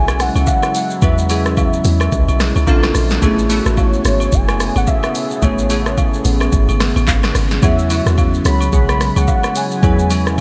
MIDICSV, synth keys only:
0, 0, Header, 1, 2, 480
1, 0, Start_track
1, 0, Key_signature, 4, "major"
1, 0, Tempo, 550459
1, 891, Time_signature, 4, 2, 24, 8
1, 9074, End_track
2, 0, Start_track
2, 0, Title_t, "Synth keys"
2, 0, Program_c, 0, 88
2, 0, Control_c, 0, 64, 127
2, 0, Note_on_c, 0, 54, 78
2, 0, Note_on_c, 0, 59, 71
2, 0, Note_on_c, 0, 61, 73
2, 0, Note_on_c, 0, 64, 71
2, 0, Note_on_c, 0, 66, 81
2, 0, Note_on_c, 0, 68, 84
2, 886, Note_off_c, 0, 54, 0
2, 886, Note_on_c, 0, 54, 75
2, 890, Note_off_c, 0, 59, 0
2, 890, Note_on_c, 0, 59, 69
2, 894, Note_off_c, 0, 61, 0
2, 894, Note_on_c, 0, 61, 69
2, 898, Note_off_c, 0, 64, 0
2, 898, Note_on_c, 0, 64, 71
2, 902, Note_on_c, 0, 71, 85
2, 1088, Note_off_c, 0, 54, 0
2, 1090, Note_off_c, 0, 59, 0
2, 1092, Note_off_c, 0, 61, 0
2, 1095, Note_off_c, 0, 64, 0
2, 1097, Note_off_c, 0, 71, 0
2, 1126, Note_on_c, 0, 54, 78
2, 1130, Note_on_c, 0, 59, 69
2, 1135, Note_on_c, 0, 61, 74
2, 1139, Note_on_c, 0, 64, 72
2, 1143, Note_off_c, 0, 68, 0
2, 1143, Note_on_c, 0, 68, 87
2, 1904, Note_off_c, 0, 54, 0
2, 1907, Note_off_c, 0, 59, 0
2, 1909, Note_off_c, 0, 61, 0
2, 1911, Note_off_c, 0, 64, 0
2, 1913, Note_off_c, 0, 68, 0
2, 2325, Note_on_c, 0, 58, 97
2, 2329, Note_on_c, 0, 60, 91
2, 2333, Note_on_c, 0, 62, 92
2, 2338, Note_on_c, 0, 65, 90
2, 2342, Note_on_c, 0, 69, 109
2, 2343, Control_c, 0, 64, 0
2, 2347, Note_off_c, 0, 66, 0
2, 2470, Control_c, 0, 64, 127
2, 2728, Note_off_c, 0, 58, 0
2, 2730, Note_off_c, 0, 60, 0
2, 2732, Note_off_c, 0, 62, 0
2, 2734, Note_off_c, 0, 65, 0
2, 2736, Note_off_c, 0, 69, 0
2, 2805, Note_on_c, 0, 57, 91
2, 2809, Note_on_c, 0, 59, 83
2, 2814, Note_on_c, 0, 61, 83
2, 2818, Note_on_c, 0, 64, 82
2, 2822, Note_on_c, 0, 68, 98
2, 2824, Control_c, 0, 64, 0
2, 2959, Control_c, 0, 64, 127
2, 3008, Note_off_c, 0, 57, 0
2, 3010, Note_off_c, 0, 59, 0
2, 3012, Note_off_c, 0, 61, 0
2, 3014, Note_off_c, 0, 64, 0
2, 3017, Note_off_c, 0, 68, 0
2, 3046, Note_on_c, 0, 57, 98
2, 3050, Note_on_c, 0, 59, 84
2, 3054, Note_on_c, 0, 61, 83
2, 3059, Note_on_c, 0, 64, 87
2, 3063, Note_on_c, 0, 66, 100
2, 3824, Note_off_c, 0, 57, 0
2, 3826, Note_off_c, 0, 59, 0
2, 3829, Note_off_c, 0, 61, 0
2, 3831, Note_off_c, 0, 64, 0
2, 3833, Note_off_c, 0, 66, 0
2, 4725, Note_on_c, 0, 57, 75
2, 4730, Note_on_c, 0, 59, 69
2, 4734, Note_on_c, 0, 61, 70
2, 4738, Note_on_c, 0, 64, 69
2, 4742, Note_on_c, 0, 68, 83
2, 4928, Note_off_c, 0, 57, 0
2, 4930, Note_off_c, 0, 59, 0
2, 4932, Note_off_c, 0, 61, 0
2, 4934, Note_off_c, 0, 64, 0
2, 4936, Note_off_c, 0, 68, 0
2, 4966, Note_on_c, 0, 57, 78
2, 4970, Note_on_c, 0, 59, 72
2, 4974, Note_on_c, 0, 61, 73
2, 4978, Note_on_c, 0, 64, 68
2, 4983, Note_on_c, 0, 68, 89
2, 5744, Note_off_c, 0, 57, 0
2, 5746, Note_off_c, 0, 59, 0
2, 5749, Note_off_c, 0, 61, 0
2, 5750, Note_off_c, 0, 64, 0
2, 5753, Note_off_c, 0, 68, 0
2, 6646, Note_on_c, 0, 54, 79
2, 6649, Note_on_c, 0, 59, 70
2, 6654, Note_on_c, 0, 61, 71
2, 6658, Note_on_c, 0, 64, 68
2, 6662, Note_on_c, 0, 68, 87
2, 6663, Control_c, 0, 64, 0
2, 6829, Control_c, 0, 64, 127
2, 6848, Note_off_c, 0, 54, 0
2, 6850, Note_off_c, 0, 59, 0
2, 6852, Note_off_c, 0, 61, 0
2, 6854, Note_off_c, 0, 64, 0
2, 6857, Note_off_c, 0, 68, 0
2, 6886, Note_on_c, 0, 54, 76
2, 6890, Note_on_c, 0, 59, 74
2, 6894, Note_on_c, 0, 61, 73
2, 6898, Note_on_c, 0, 64, 72
2, 6903, Note_on_c, 0, 66, 84
2, 7664, Note_off_c, 0, 54, 0
2, 7666, Note_off_c, 0, 59, 0
2, 7669, Note_off_c, 0, 61, 0
2, 7671, Note_off_c, 0, 64, 0
2, 7673, Note_off_c, 0, 66, 0
2, 8566, Note_on_c, 0, 54, 77
2, 8570, Note_on_c, 0, 59, 69
2, 8574, Note_on_c, 0, 61, 69
2, 8578, Note_on_c, 0, 64, 71
2, 8583, Note_on_c, 0, 71, 82
2, 8768, Note_off_c, 0, 54, 0
2, 8770, Note_off_c, 0, 59, 0
2, 8772, Note_off_c, 0, 61, 0
2, 8775, Note_off_c, 0, 64, 0
2, 8777, Note_off_c, 0, 71, 0
2, 8806, Note_on_c, 0, 54, 78
2, 8810, Note_on_c, 0, 59, 70
2, 8815, Note_on_c, 0, 61, 72
2, 8819, Note_on_c, 0, 64, 71
2, 8823, Note_on_c, 0, 68, 86
2, 9074, Note_off_c, 0, 54, 0
2, 9074, Note_off_c, 0, 59, 0
2, 9074, Note_off_c, 0, 61, 0
2, 9074, Note_off_c, 0, 64, 0
2, 9074, Note_off_c, 0, 68, 0
2, 9074, End_track
0, 0, End_of_file